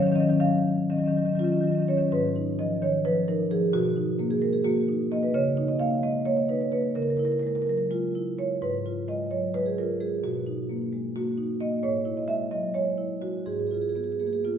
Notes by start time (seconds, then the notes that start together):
Already playing: C#5
0.00 D#3 F#3 C#4
0.07 C#4
0.12 D#3 F#3 C#4 D#5
0.20 D#3 F#3 C#4
0.29 D#3 F#3 C#4
0.40 D#3 F#3 C#4 F5
0.90 D#3 F#3 C#4 D#5
0.97 D#3 F#3 C#4 D#5
1.04 D#3 C#4 D#5
1.09 F#3 D#5
1.15 D#3 F#3 C#4 D#5
1.22 D#3 F#3 C#4 D#5
1.29 C#4
1.34 D#3 F#3 C#4 D#5
1.39 F4 D#5
1.44 D#3 F#3 C#4
1.49 D#3 C#4 D#5
1.54 F#3 D#5
1.60 D#3 F#3 C#4 D#5
1.67 D#3 C#4 D#5
1.72 F#3 C#4
1.78 D#3 F#3 C#4 D#5
1.88 D#3 F#3 C#4 C#5
1.97 D#3 F#3 C#4
2.12 G#2 B4
2.36 D#4
2.59 F3 D#5
2.82 D#3 C#5
3.05 F3 B4
3.28 D#4 A#4
3.51 F3 G#4
3.73 B2 F#4
3.96 D#4
4.19 A#3
4.31 G#4
4.42 G#3 A#4
4.53 G#4
4.64 A#3 F#4
4.89 D#4
5.12 A#3 D#5
5.23 B4
5.34 C#3 C#5
5.57 D#4
5.68 D#5
5.79 A#3 F5
6.03 G#3 D#5
6.25 A#3 C#5
6.37 D#5
6.49 D#4 B4
6.61 C#5
6.72 A#3 B4
6.95 C#3 A#4
7.02 A#4
7.10 A#4
7.17 E4 A#4
7.25 A#4
7.32 A#4
7.39 G#3 A#4
7.47 A#4
7.55 A#4
7.62 A#4
7.67 F#3 A#4
7.78 A#4
7.91 G#3 F4
8.15 E4
8.39 G#3 C#5
8.62 G#2 B4
8.86 F4
9.08 G#3 D#5
9.31 F#3 C#5
9.54 G#3 B4
9.66 G#4
9.78 F4 A#4
10.00 G#3 G#4
10.24 B2 F#4
10.47 D#4
10.70 A#3
10.93 G#3
11.16 A#3 F#4
11.38 D#4
11.60 A#3 D#5
11.83 A2 C#5
12.05 E4
12.17 D#5
12.28 G#3 E5
12.51 F#3 D#5
12.74 G#3 C#5
12.98 E4
13.22 G#3 F#4
13.46 G#2 G#4
13.53 G#4
13.60 G#4
13.67 G#4
13.71 F4 G#4
13.82 G#4
13.89 G#4
13.96 B3 G#4
14.04 G#4
14.12 G#4
14.20 A#3 G#4
14.27 G#4
14.33 G#4
14.45 B3 F4